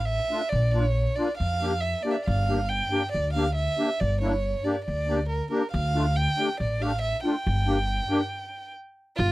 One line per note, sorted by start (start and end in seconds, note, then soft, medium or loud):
0.00 0.17 A1 medium
0.00 0.07 F5 medium
0.06 0.51 E5 medium
0.30 0.41 A3 medium
0.30 0.42 D4 medium
0.30 0.42 F4 medium
0.49 1.05 A#1 medium
0.49 0.71 D5 medium
0.71 0.85 A#3 medium
0.71 0.85 D4 medium
0.71 0.86 F4 medium
0.71 0.83 D5 medium
0.83 1.17 C#5 medium
1.16 1.28 A#3 medium
1.16 1.29 D4 medium
1.16 1.29 F4 medium
1.16 1.37 D5 medium
1.37 1.92 F2 medium
1.37 1.82 F5 medium
1.61 1.72 A#3 medium
1.61 1.72 D4 medium
1.61 1.73 G4 medium
1.81 2.04 E5 medium
2.03 2.16 A#3 medium
2.03 2.16 D4 medium
2.03 2.16 G4 medium
2.03 2.13 D5 medium
2.11 2.26 D5 medium
2.11 2.16 E5 medium
2.25 2.79 G1 medium
2.25 2.70 F5 medium
2.49 2.59 A#3 medium
2.49 2.60 D4 soft
2.49 2.60 G4 medium
2.69 3.11 G5 medium
2.91 3.02 A#3 medium
2.91 3.03 D4 medium
2.91 3.03 G4 medium
3.12 3.66 D2 medium
3.12 3.33 D5 medium
3.33 3.46 A#3 medium
3.33 3.47 D4 medium
3.33 3.47 G4 medium
3.33 3.54 F5 medium
3.55 4.01 E5 medium
3.77 3.89 A#3 medium
3.77 3.89 D4 medium
3.77 3.90 G4 medium
4.00 4.53 G1 medium
4.00 4.20 D5 medium
4.21 4.33 A#3 medium
4.21 4.33 D4 medium
4.21 4.33 E4 medium
4.21 4.66 C#5 medium
4.64 4.76 A#3 medium
4.64 4.76 D4 medium
4.64 4.76 G4 medium
4.64 4.84 D5 medium
4.85 5.39 D2 medium
4.85 5.26 D5 medium
5.07 5.19 A#3 medium
5.07 5.19 D4 medium
5.07 5.20 G4 medium
5.29 5.50 A#4 medium
5.51 5.62 A#3 medium
5.51 5.62 D4 medium
5.51 5.63 G4 medium
5.51 5.71 A#4 medium
5.71 6.26 D2 medium
5.71 6.18 F5 medium
5.94 6.05 A3 medium
5.94 6.06 D4 medium
5.94 6.06 F4 medium
6.16 6.59 G5 loud
6.38 6.49 A3 medium
6.38 6.49 D4 medium
6.38 6.49 G4 medium
6.60 7.12 A1 medium
6.60 6.83 D5 medium
6.81 6.92 A3 medium
6.81 6.92 D4 medium
6.81 6.92 G4 medium
6.81 7.01 F5 medium
7.01 7.22 E5 medium
7.24 7.35 A3 medium
7.24 7.35 D4 medium
7.24 7.36 F4 medium
7.24 8.71 G5 medium
7.47 7.98 G1 medium
7.66 7.78 A#3 medium
7.66 7.78 D4 medium
7.66 7.78 G4 medium
8.09 8.21 A#3 medium
8.09 8.21 D4 medium
8.09 8.21 G4 medium
9.17 9.32 G1 medium
9.17 9.32 F4 loud